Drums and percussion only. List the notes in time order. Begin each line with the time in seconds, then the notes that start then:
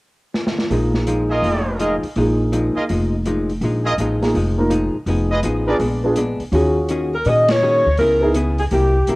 0.34 snare
0.47 snare
0.58 snare
0.71 open hi-hat
0.94 snare
1.07 closed hi-hat
1.44 open hi-hat
1.80 closed hi-hat
2.03 open hi-hat
2.16 open hi-hat
2.53 closed hi-hat
2.89 open hi-hat
3.25 closed hi-hat
3.50 open hi-hat
3.62 open hi-hat
3.98 closed hi-hat
4.22 snare, open hi-hat
4.35 open hi-hat
4.71 closed hi-hat
5.07 open hi-hat
5.43 closed hi-hat
5.80 open hi-hat
6.16 closed hi-hat
6.40 open hi-hat
6.53 open hi-hat
6.89 closed hi-hat
7.25 open hi-hat
7.48 snare, ride
7.97 open hi-hat
8.34 closed hi-hat
8.58 open hi-hat
8.71 open hi-hat
9.07 closed hi-hat